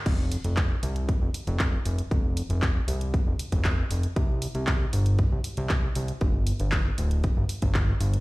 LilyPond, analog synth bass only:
\new Staff \with { instrumentName = "Analog synth bass" } { \clef bass \time 4/4 \key c \minor \tempo 4 = 117 f,,8 r16 f,,8 r16 c,8 r16 f,,16 r16 f,,8 r16 f,,16 r16 | f,,8 r16 f,,8 r16 c,8 r16 f,,16 r16 f,,8 r16 f,,16 r16 | c,8 r16 c,8 r16 g,,8 r16 c,16 r16 c,8 r16 c,16 r16 | g,,8 r16 g,,8 r16 d,,8 r16 g,,16 r16 g,,8 r16 g,,16 r16 | }